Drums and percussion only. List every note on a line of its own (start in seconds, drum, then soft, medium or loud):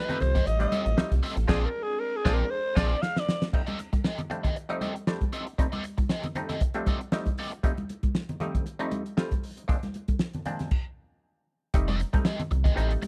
0.09 closed hi-hat medium
0.09 low conga medium
0.20 closed hi-hat medium
0.20 low conga medium
0.35 kick medium
0.35 snare soft
0.35 closed hi-hat soft
0.35 low conga medium
0.46 closed hi-hat medium
0.46 muted conga soft
0.60 closed hi-hat medium
0.72 closed hi-hat medium
0.72 muted conga soft
0.72 high conga medium
0.86 closed hi-hat medium
0.97 snare loud
0.97 muted conga soft
1.12 kick medium
1.12 closed hi-hat medium
1.23 open hi-hat medium
1.37 closed hi-hat medium
1.49 kick loud
1.49 snare loud
1.49 crash medium
2.26 kick loud
2.26 snare loud
2.77 kick loud
2.77 snare loud
2.77 crash medium
3.03 snare medium
3.17 snare medium
3.29 snare loud
3.42 snare loud
3.54 kick loud
3.54 crash medium
3.67 closed hi-hat soft
3.67 high conga medium
3.79 closed hi-hat medium
3.79 muted conga soft
3.93 kick medium
3.93 closed hi-hat soft
3.93 high conga medium
4.04 snare medium
4.04 muted conga soft
4.18 closed hi-hat soft
4.18 low conga medium
4.30 closed hi-hat medium
4.30 low conga medium
4.44 kick medium
4.44 closed hi-hat soft
4.44 low conga medium
4.56 closed hi-hat medium
4.70 closed hi-hat soft
4.81 closed hi-hat medium
4.81 muted conga soft
4.81 high conga medium
4.96 closed hi-hat soft
5.07 snare medium
5.21 kick medium
5.21 closed hi-hat soft
5.21 high conga medium
5.32 closed hi-hat medium
5.32 muted conga soft
5.47 closed hi-hat medium
5.59 kick loud
5.59 closed hi-hat medium
5.72 closed hi-hat soft
5.72 high conga medium
5.84 closed hi-hat medium
5.98 kick medium
5.98 closed hi-hat soft
5.98 high conga medium
6.09 snare medium
6.09 muted conga soft
6.23 closed hi-hat medium
6.23 low conga medium
6.35 closed hi-hat medium
6.35 low conga medium
6.49 snare soft
6.49 closed hi-hat soft
6.49 low conga medium
6.60 kick medium
6.60 closed hi-hat medium
6.60 muted conga soft
6.74 closed hi-hat medium
6.86 kick medium
6.86 closed hi-hat medium
6.86 high conga medium
7.01 closed hi-hat soft
7.12 snare loud
7.12 muted conga soft
7.26 kick medium
7.26 closed hi-hat medium
7.26 high conga medium
7.38 open hi-hat medium
7.52 closed hi-hat medium
7.64 kick loud
7.64 closed hi-hat medium
7.64 muted conga soft
7.77 closed hi-hat soft
7.77 high conga medium
7.89 closed hi-hat medium
7.89 muted conga soft
8.03 kick medium
8.03 closed hi-hat soft
8.03 high conga medium
8.15 snare medium
8.15 muted conga soft
8.29 closed hi-hat soft
8.29 low conga medium
8.40 closed hi-hat medium
8.40 muted conga soft
8.40 low conga medium
8.55 kick medium
8.55 closed hi-hat soft
8.55 low conga medium
8.66 closed hi-hat medium
8.66 muted conga soft
8.80 closed hi-hat medium
8.91 closed hi-hat medium
8.91 muted conga soft
8.91 high conga medium
9.06 closed hi-hat soft
9.18 snare loud
9.18 muted conga soft
9.31 kick medium
9.31 closed hi-hat medium
9.31 high conga medium
9.43 open hi-hat medium
9.57 closed hi-hat medium
9.69 kick loud
9.69 closed hi-hat medium
9.69 muted conga soft
9.83 snare soft
9.83 closed hi-hat soft
9.83 high conga medium
9.94 closed hi-hat medium
9.94 muted conga soft
10.08 kick medium
10.08 closed hi-hat soft
10.08 high conga medium
10.19 snare loud
10.19 muted conga soft
10.33 closed hi-hat soft
10.33 low conga medium
10.45 closed hi-hat medium
10.45 low conga medium
10.59 snare soft
10.59 closed hi-hat soft
10.59 low conga medium
10.71 kick loud
10.71 crash medium
11.74 kick loud
11.74 closed hi-hat medium
11.74 muted conga soft
11.88 snare soft
11.88 closed hi-hat soft
11.88 high conga medium
12.00 closed hi-hat medium
12.00 muted conga soft
12.13 kick loud
12.13 closed hi-hat medium
12.13 high conga medium
12.25 snare loud
12.39 closed hi-hat medium
12.39 low conga medium
12.51 closed hi-hat medium
12.51 muted conga soft
12.51 low conga medium
12.65 kick medium
12.65 closed hi-hat soft
12.65 low conga medium
12.77 closed hi-hat medium
12.91 closed hi-hat medium
13.02 closed hi-hat medium
13.02 muted conga soft
13.02 high conga medium